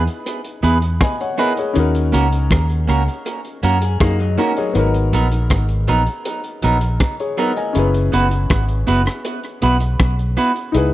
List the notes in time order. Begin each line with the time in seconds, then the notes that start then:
Already playing: D#4 E4 G#4 B4
0.07 closed hi-hat
0.26 closed hi-hat
0.45 closed hi-hat
0.63 E2 B3 E4 G#4 B4, closed hi-hat
0.82 closed hi-hat
1.01 D#5 G#5, kick, cross-stick, closed hi-hat
1.21 C#5 F#5, closed hi-hat
1.38 B3 E4 G#4 A#4 B4 D#5, closed hi-hat
1.57 G#4 C#5, closed hi-hat
1.74 D#2 C#4 D#4 F#4, closed hi-hat
1.79 A#4
1.95 closed hi-hat
2.12 C#2 A#3 C#4 F#4 A#4, closed hi-hat
2.32 closed hi-hat
2.51 D#2, kick, cross-stick, closed hi-hat
2.70 closed hi-hat
2.88 C#2 A#3 C#4 F#4 A#4, closed hi-hat
3.08 closed hi-hat
3.26 closed hi-hat
3.45 closed hi-hat
3.63 F#2 A#3 C#4 F#4 A#4, closed hi-hat
3.82 G#4, closed hi-hat
4.00 F#2 A#3 D#4 F#4 G#4, kick, cross-stick, closed hi-hat
4.20 F#3 D#4, closed hi-hat
4.38 A#3 C#4 D#4 F#4 A#4, closed hi-hat
4.57 F#3 D#4 G#4 C#5, closed hi-hat
4.73 G#1 B3 D#4 F#4, closed hi-hat
4.79 A#4
4.94 closed hi-hat
5.13 A#1 F#3 B3 D#4 A#4, closed hi-hat
5.32 closed hi-hat
5.50 G#1, kick, cross-stick, closed hi-hat
5.69 closed hi-hat
5.88 A#1 F#3 B3 D#4 A#4, closed hi-hat
6.07 closed hi-hat
6.25 closed hi-hat
6.44 closed hi-hat
6.62 A#1 F#3 B3 D#4 A#4, closed hi-hat
6.81 closed hi-hat
7.00 kick, cross-stick, closed hi-hat
7.20 G#4 C#5, closed hi-hat
7.37 F#3 B3 D#4 A#4 D#5, closed hi-hat
7.57 D#5 G#5, closed hi-hat
7.73 F#1 C#4 E4, closed hi-hat
7.77 G#4 B4
7.94 closed hi-hat
8.12 F#1 B3 E4 F#4 B4, closed hi-hat
8.31 closed hi-hat
8.50 G#1, kick, cross-stick, closed hi-hat
8.69 closed hi-hat
8.87 F#1 B3 E4 F#4 B4, closed hi-hat
9.06 cross-stick, closed hi-hat
9.25 closed hi-hat
9.44 closed hi-hat
9.62 B1 B3 E4 F#4 B4, closed hi-hat
9.80 closed hi-hat
10.00 B1, kick, cross-stick, closed hi-hat
10.19 closed hi-hat
10.37 B3 E4 F#4 B4, closed hi-hat
10.56 closed hi-hat
10.72 C#2 D#4 E4 G#4, closed hi-hat
10.78 B4